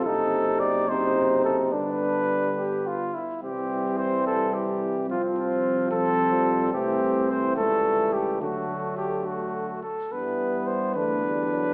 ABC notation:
X:1
M:6/8
L:1/16
Q:3/8=72
K:Flyd
V:1 name="Trumpet"
A4 d2 c4 A2 | B8- B2 z2 | G4 c2 A2 G4 | F2 F4 A6 |
[K:G] G4 c2 A4 G2 | F4 G2 F4 A2 | B4 c2 B6 |]
V:2 name="Flugelhorn"
^D6 D6 | D6 G2 F2 E2 | C12 | C6 C6 |
[K:G] C6 A,6 | A,8- A,2 z2 | B,6 D6 |]
V:3 name="French horn" clef=bass
C6 C6 | G,8- G,2 z2 | G,12 | F,6 F,3 G,3 |
[K:G] A,6 G,6 | F,8- F,2 z2 | G,6 A,2 G,2 F,2 |]
V:4 name="Euphonium" clef=bass
C,6 C,6 | D,8- D,2 z2 | E,12 | F,6 F,6 |
[K:G] E,6 E,6 | D,8- D,2 z2 | E,6 D,6 |]
V:5 name="Tuba" clef=bass
^F,,,12 | G,,,8- G,,,2 z2 | C,,12- | C,,12 |
[K:G] C,,6 ^C,,6 | D,,8- D,,2 z2 | G,,6 E,,6 |]